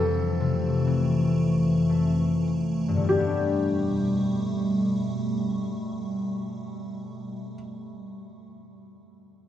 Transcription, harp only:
0.00 3.13 F2 soft
0.40 3.13 C3 soft
0.87 3.13 E3 soft
1.89 3.11 A3 soft
2.88 7.33 G2 soft
2.96 7.41 D3 soft
3.03 7.48 G3 soft
3.11 7.56 A3 soft
3.19 7.64 B3 soft
3.26 7.71 D4 soft

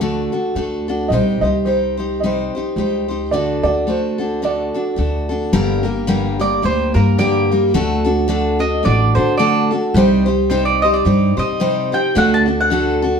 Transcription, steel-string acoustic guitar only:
0.01 0.32 D3 medium
0.01 0.32 A3 medium
0.01 0.32 D4 medium
0.01 0.32 F#4 medium
0.01 0.31 A4 medium
0.32 0.55 D4 soft
0.32 0.55 F#4 soft
0.32 0.55 A4 soft
0.56 0.87 A3 soft
0.56 0.87 D4 soft
0.56 0.87 F#4 soft
0.56 0.87 A4 medium
0.88 1.12 D4 soft
0.88 1.12 F#4 soft
0.88 1.11 A4 soft
1.12 1.43 C3 medium
1.12 1.43 G3 medium
1.12 1.43 D#4 medium
1.12 1.43 G4 medium
1.12 1.42 C5 medium
1.43 1.66 D#4 soft
1.43 1.66 G4 soft
1.43 1.66 C5 soft
1.66 1.97 G3 soft
1.66 1.98 D#4 soft
1.66 1.98 G4 soft
1.66 1.96 C5 soft
1.97 2.22 D#4 soft
1.97 2.22 G4 soft
1.97 2.21 C5 soft
2.23 2.54 C3 soft
2.23 2.54 G3 medium
2.23 2.54 D#4 medium
2.23 2.55 G4 medium
2.23 2.54 C5 medium
2.55 2.77 D#4 soft
2.55 2.77 G4 soft
2.55 2.78 C5 soft
2.77 3.08 G3 soft
2.77 3.09 D#4 soft
2.77 3.09 G4 medium
2.77 3.07 C5 soft
3.08 3.33 D#4 soft
3.08 3.33 G4 soft
3.08 3.32 C5 soft
3.32 3.64 D3 medium
3.32 3.64 A3 medium
3.32 3.64 D4 medium
3.32 3.64 F#4 medium
3.32 3.62 A4 medium
3.63 3.87 D4 soft
3.63 3.87 F#4 soft
3.63 3.87 A4 soft
3.87 4.19 A3 soft
3.87 4.19 D4 soft
3.87 4.18 F#4 soft
3.87 4.17 A4 medium
4.18 4.42 D4 soft
4.18 4.42 F#4 soft
4.18 4.42 A4 soft
4.42 4.74 D3 soft
4.42 4.74 A3 medium
4.42 4.75 D4 soft
4.42 4.74 F#4 medium
4.42 4.73 A4 medium
4.74 4.96 D4 soft
4.74 4.97 F#4 soft
4.74 4.98 A4 soft
4.96 5.29 A3 soft
4.96 5.29 D4 soft
4.96 5.29 F#4 soft
4.96 5.28 A4 soft
5.29 5.53 D4 soft
5.29 5.53 F#4 soft
5.29 5.53 A4 soft
5.53 5.85 G2 medium
5.53 5.85 D3 medium
5.53 5.84 G3 medium
5.53 5.83 A#3 medium
5.53 5.83 G4 medium
5.53 5.82 A#4 medium
5.83 6.07 G3 soft
5.83 6.07 A#3 soft
5.83 6.07 G4 soft
5.83 6.07 A#4 soft
6.07 6.40 G2 medium
6.07 6.40 D3 medium
6.07 6.40 G3 medium
6.07 6.39 A#3 medium
6.07 6.38 G4 medium
6.07 6.38 A#4 medium
6.39 6.61 G3 soft
6.39 6.62 A#3 soft
6.39 6.62 G4 soft
6.39 6.63 A#4 soft
6.62 6.95 G3 soft
6.62 6.95 A#3 medium
6.62 6.93 G4 soft
6.62 6.93 A#4 medium
6.94 7.18 G3 soft
6.94 7.18 A#3 soft
6.94 7.19 G4 soft
6.94 7.19 A#4 soft
7.18 7.51 G2 medium
7.18 7.50 D3 medium
7.18 7.51 G3 medium
7.18 7.51 A#3 medium
7.18 7.51 G4 medium
7.18 7.50 A#4 medium
7.51 7.74 G3 soft
7.51 7.75 A#3 soft
7.51 7.74 G4 soft
7.51 7.74 A#4 soft
7.74 8.06 D3 medium
7.74 8.06 A3 medium
7.74 8.05 D4 medium
7.74 8.04 F#4 medium
7.74 8.03 A4 medium
8.05 8.28 D4 soft
8.05 8.28 F#4 soft
8.05 8.29 A4 medium
8.28 8.60 D3 medium
8.28 8.61 A3 medium
8.28 8.60 D4 medium
8.28 8.59 F#4 medium
8.28 8.58 A4 medium
8.59 8.83 D4 soft
8.59 8.84 F#4 soft
8.59 8.84 A4 soft
8.83 9.15 A3 soft
8.83 9.16 D4 medium
8.83 9.15 F#4 medium
8.83 9.14 A4 medium
9.15 9.38 D4 soft
9.15 9.39 F#4 soft
9.15 9.39 A4 soft
9.39 9.71 D3 medium
9.39 9.71 A3 medium
9.39 9.71 D4 medium
9.39 9.71 F#4 medium
9.39 9.70 A4 medium
9.71 9.96 D4 soft
9.71 9.96 F#4 soft
9.71 9.95 A4 soft
9.95 10.27 C3 medium
9.95 10.27 G3 medium
9.95 10.27 D#4 medium
9.95 10.26 G4 medium
9.95 10.25 C5 medium
10.26 10.50 D#4 soft
10.26 10.50 G4 soft
10.26 10.50 C5 medium
10.50 10.82 C3 medium
10.50 10.82 G3 medium
10.50 10.82 D#4 medium
10.50 10.82 G4 medium
10.50 10.82 C5 medium
10.84 11.05 D#4 soft
10.84 11.05 G4 soft
10.84 11.06 C5 soft
11.05 11.37 G3 medium
11.05 11.37 D#4 soft
11.05 11.36 G4 medium
11.05 11.36 C5 medium
11.37 11.60 D#4 soft
11.37 11.60 G4 soft
11.37 11.60 C5 medium
11.60 11.92 C3 medium
11.60 11.92 G3 medium
11.60 11.92 D#4 medium
11.60 11.92 G4 medium
11.60 11.91 C5 medium
11.92 12.16 D#4 soft
11.92 12.16 G4 soft
11.92 12.16 C5 soft
12.15 12.47 D3 medium
12.15 12.47 A3 medium
12.15 12.47 D4 medium
12.15 12.46 F#4 medium
12.15 12.45 A4 medium
12.46 12.70 D4 soft
12.46 12.71 F#4 soft
12.46 12.70 A4 soft
12.70 13.02 D3 medium
12.70 13.03 A3 medium
12.70 13.03 D4 medium
12.70 13.03 F#4 medium
12.70 13.01 A4 medium
13.02 13.20 D4 soft
13.02 13.20 F#4 soft
13.02 13.20 A4 medium

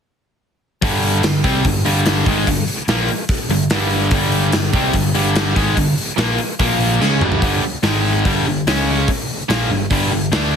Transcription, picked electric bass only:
0.82 1.20 G1 medium
1.23 1.42 G1 medium
1.44 1.63 C2 medium
1.64 1.84 G1 medium
1.85 2.24 G1 medium
2.26 2.45 G#1 medium
2.47 2.66 G1 medium
2.88 3.07 A#1 medium
3.49 3.69 G1 medium
3.69 4.08 G1 medium
4.12 4.50 G1 medium
4.53 4.73 G1 medium
4.73 4.93 C2 medium
4.94 5.14 G1 medium
5.15 5.53 G1 medium
5.56 5.76 G#1 medium
5.77 5.96 G1 medium
6.18 6.37 A#1 medium
6.60 6.98 A#1 medium
7.01 7.20 C#2 medium
7.20 7.40 G1 loud
7.42 7.61 G1 medium
7.62 muted picked electric bass stroke soft
7.83 8.22 G#1 medium
8.25 8.45 G1 medium
8.45 8.65 G1 medium
8.66 9.05 C#2 medium
9.49 9.69 A#1 medium
9.69 9.89 G1 medium
9.91 10.10 G1 medium
10.11 10.31 G1 medium
10.32 10.56 D2 medium

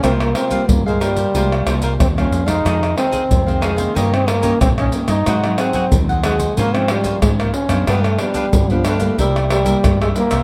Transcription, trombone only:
0.04 0.11 C4 medium
0.22 0.38 A#3 medium
0.36 0.71 C4 medium
0.69 0.86 A#3 medium
0.86 1.03 G#3 medium
1.02 1.73 G3 medium
2.01 2.08 C4 medium
2.19 2.49 C#4 medium
2.48 2.98 D#4 loud
2.98 3.65 C4 medium
3.64 3.98 G#3 medium
3.97 4.16 A#3 medium
4.14 4.30 C4 loud
4.28 4.61 A#3 loud
4.62 4.69 C4 medium
4.79 4.93 C#4 medium
5.08 5.60 D#4 medium
5.59 5.98 C4 medium
6.24 6.59 G#3 medium
6.58 6.77 A#3 loud
6.75 6.92 C4 medium
6.90 7.22 G3 medium
7.22 7.30 G#3 medium
7.40 7.54 A#3 medium
7.54 7.85 C#4 medium
7.88 8.05 B3 loud
8.04 8.21 A3 medium
8.20 8.73 G3 medium
8.71 8.87 F3 medium
8.85 9.19 A3 medium
9.20 9.50 G3 medium
9.51 9.97 G3 medium
10.02 10.09 G#3 medium
10.17 10.43 A#3 loud

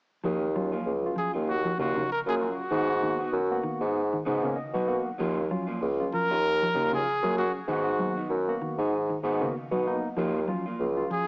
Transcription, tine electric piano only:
0.55 0.72 F#3 medium
0.55 0.72 C#4 medium
0.55 0.72 F4 medium
1.05 1.34 F#3 medium
1.05 1.34 C#4 medium
1.05 1.34 F4 medium
1.96 2.10 F#3 medium
1.96 2.10 C#4 medium
1.96 2.10 D#4 medium
2.42 2.62 F#3 medium
2.42 2.63 C#4 medium
2.42 2.63 F4 medium
3.02 3.19 A#3 medium
3.02 3.19 B3 medium
3.02 3.19 F#4 medium
3.51 3.80 A#3 medium
3.51 3.80 B3 medium
3.51 3.81 F#4 medium
4.43 4.57 A#3 medium
4.43 4.57 B3 medium
4.43 4.57 C#4 medium
4.56 4.86 D#5 medium
4.88 5.09 A#3 medium
4.88 5.09 B3 medium
4.88 5.10 F#4 medium
4.88 5.17 F#5 medium
5.51 5.67 F#3 medium
5.51 5.67 C#4 medium
5.51 5.67 F4 medium
6.00 6.29 F#3 medium
6.00 6.29 C#4 medium
6.00 6.29 F4 medium
6.93 7.06 F#3 medium
6.93 7.06 C#4 medium
6.93 7.06 F4 medium
7.38 7.59 F#3 medium
7.38 7.59 C#4 medium
7.38 7.59 G#4 medium
8.00 8.16 A#3 medium
8.00 8.16 B3 medium
8.00 8.17 F#4 medium
8.48 8.77 A#3 medium
8.48 8.78 B3 medium
8.48 8.78 F#4 loud
9.41 9.54 A#3 medium
9.41 9.55 B3 medium
9.41 9.55 F#4 medium
9.87 10.08 A#3 medium
9.87 10.07 B3 medium
9.87 10.08 D#4 medium
10.48 10.65 F#3 medium
10.48 10.65 C#4 medium
10.48 10.65 F4 medium
10.96 11.26 F#3 medium
10.96 11.26 C#4 medium
10.96 11.26 F4 medium

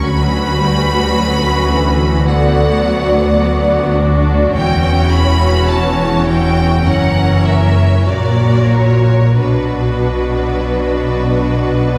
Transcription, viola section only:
0.00 0.58 F#3 medium
0.00 2.23 C#4 medium
0.58 1.15 G3 medium
1.15 1.72 F#3 medium
1.71 2.25 E3 medium
2.26 2.82 D3 medium
2.26 3.37 B3 medium
2.81 3.38 F#3 medium
3.38 4.53 F#3 soft
3.38 3.96 B3 medium
3.96 4.55 D4 medium
4.54 6.81 E3 medium
4.54 6.84 C#4 medium
6.85 8.06 E3 medium
6.85 8.06 C#4 medium
8.08 9.36 F#3 soft
8.08 9.39 F#4 soft
9.37 11.98 F#3 medium
9.37 11.98 D4 medium

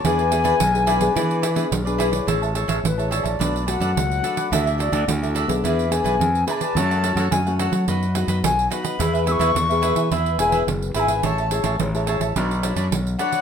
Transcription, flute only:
0.05 1.72 G#5 loud
2.84 3.10 B4 medium
3.11 3.64 D5 medium
3.66 4.53 F#5 loud
3.66 3.71 G#5 medium
4.52 4.78 E5 medium
4.79 5.05 D5 medium
5.64 5.93 E5 medium
5.91 6.46 G#5 medium
6.47 6.52 B5 loud
6.51 7.33 A5 loud
7.31 7.57 G#5 medium
7.58 7.85 F#5 medium
8.44 8.70 G#5 medium
8.71 9.24 B5 loud
9.27 9.32 E6 loud
9.31 10.13 C#6 loud
10.12 10.38 B5 medium
10.39 10.56 G#5 medium
10.95 11.01 B5 medium
11.00 11.26 G#5 loud
11.24 11.80 A5 loud
13.18 13.41 F#5 loud

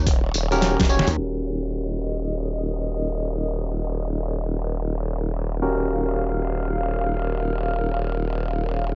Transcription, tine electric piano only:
0.52 0.87 C#4 medium
0.52 0.87 F#4 medium
0.52 0.87 G4 medium
0.52 0.87 A#4 loud
0.90 1.09 C#4 medium
0.90 1.09 F#4 medium
0.90 1.09 G4 medium
0.90 1.09 C#5 medium
1.18 5.60 C#4 medium
1.18 5.60 F#4 medium
1.18 5.60 G4 medium
1.18 5.60 A#4 medium
5.62 8.95 C#4 medium
5.62 8.95 F#4 medium
5.62 8.95 G4 medium
5.62 8.95 A#4 medium

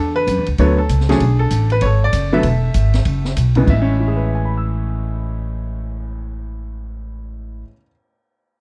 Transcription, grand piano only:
0.00 0.45 D4 medium
0.00 0.18 A4 medium
0.16 0.45 B4 loud
0.59 0.77 D3 medium
0.59 0.77 F#3 medium
0.59 0.76 A3 medium
0.59 0.77 B3 medium
0.59 0.77 A4 medium
0.59 0.79 C#5 medium
0.78 1.10 A4 medium
1.09 1.20 D3 medium
1.09 1.20 F#3 medium
1.09 1.20 A3 medium
1.09 1.20 C#4 medium
1.09 1.69 D4 medium
1.09 1.41 G#4 medium
1.39 1.69 A4 medium
1.72 1.84 B4 medium
1.82 2.36 A4 medium
1.82 2.00 C#5 medium
2.04 2.35 D5 medium
2.33 2.43 D3 medium
2.33 2.44 F#3 medium
2.33 2.44 A3 medium
2.33 2.44 B3 medium
2.33 3.34 E5 medium
2.37 3.36 A4 medium
3.56 7.60 A2 medium
3.56 3.68 C#3 medium
3.56 3.63 E3 medium
3.56 3.68 G#3 medium
3.56 3.68 B3 medium
3.65 7.65 E3 soft
3.70 7.69 G#3 medium
3.70 4.23 E5 medium
3.82 7.73 C#4 medium
4.00 7.63 E4 soft
4.08 7.67 G#4 soft
4.16 7.71 B4 soft
4.25 7.75 E5 soft
4.35 7.81 G#5 soft
4.45 7.86 B5 soft
4.57 7.92 E6 soft

